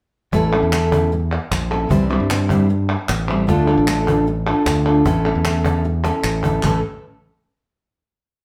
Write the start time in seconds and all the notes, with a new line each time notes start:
0.32 A1 E3 A3 C#4 E4 A4, cajon bass, cajon slap
0.52 C#4 E4 A4
0.62 E2
0.72 A3 C#4 E4 A4, cajon slap, clap
0.92 C#4 E4 A4, cajon bass
1.12 muted nylon-string guitar stroke, cajon slap
1.32 clap
1.51 A#1, cajon bass, cajon slap, clap
1.71 C#4 E4 A4, cajon slap
1.89 C2 C3 E3 G3 C4 E4 C5, cajon bass
2.09 G3 C4 E4 C5
2.20 G2
2.30 G3 C4 E4 C5, cajon slap, clap
2.49 G3 C4 E4 C5, cajon bass, clap
2.69 muted nylon-string guitar stroke
2.89 clap
3.09 A1, cajon slap, clap
3.28 G3 C4 E4 C5, clap
3.47 D2 D3 A3 D4 F4 A4, cajon bass, cajon slap
3.68 D4 F4 A4
3.77 A1
3.86 A3 D4 F4 A4, cajon slap, clap
4.07 D4 F4 A4, cajon bass, clap
4.27 muted nylon-string guitar stroke
4.47 D4 F4 A4, clap
4.66 D2, cajon bass, cajon slap, clap
4.86 D4 F4 A4, clap
5.05 A1 E3 A3 C#4 E4 A4, cajon bass, cajon slap
5.25 C#4 E4 A4
5.35 E2
5.45 A3 C#4 E4 A4, cajon slap, clap
5.65 C#4 E4 A4, cajon bass, clap
5.84 muted nylon-string guitar stroke, cajon slap
6.04 C#4 E4 A4, cajon slap
6.24 A1, clap
6.43 C#4 E4 A4, cajon bass, clap
6.63 A1 A2 E3 A3 C#4 E4 A4, cajon bass, clap